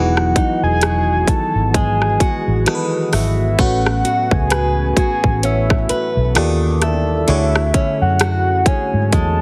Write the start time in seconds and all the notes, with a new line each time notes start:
Already playing: E1 D#3 E3 F#3 G#3 B3 D#4 F#4 G#4 B4 F#5
0.17 cross-stick
0.36 D#4, kick, closed hi-hat
0.63 E1 G#5
0.81 F#4, cross-stick, closed hi-hat
1.28 A5, muted fingered electric bass stroke, kick, closed hi-hat
1.55 G#1
1.74 G#3 G#5, kick, closed hi-hat
2.02 cross-stick
2.20 F#4, muted fingered electric bass stroke, kick, closed hi-hat
2.47 A1
2.66 D#3 E3 G#3 B3 F#4 A4, cross-stick, closed hi-hat
2.75 B4
3.12 G#1 F#4 E5, cross-stick, open hi-hat
3.58 A1 A2 E3 A3 C#4 F#4 A4 B4 F#5, kick, closed hi-hat
3.86 cross-stick
4.05 F#4, closed hi-hat
4.31 C#2 G#5, kick
4.50 B4, cross-stick, closed hi-hat
4.97 F#4 G#5, kick, closed hi-hat
5.24 A1, kick
5.43 C#4 E5, closed hi-hat
5.70 kick, cross-stick
5.89 B4, muted fingered electric bass stroke, closed hi-hat
6.17 B1
6.35 D#2 D#3 A#3 F4 G4 A4 D5, cross-stick, closed hi-hat
6.82 A4 E5, cross-stick, closed hi-hat
7.27 D2 D3 F#3 A3 C#4 E4 F#4 G#4 C#5, closed hi-hat
7.55 cross-stick
7.74 C#4, kick, closed hi-hat
8.01 F#2 F#5
8.20 F#4, cross-stick, closed hi-hat
8.66 C#4 G#5, muted fingered electric bass stroke, kick, closed hi-hat
8.93 G#2
9.12 E2 G#3 F#4 A5, kick, closed hi-hat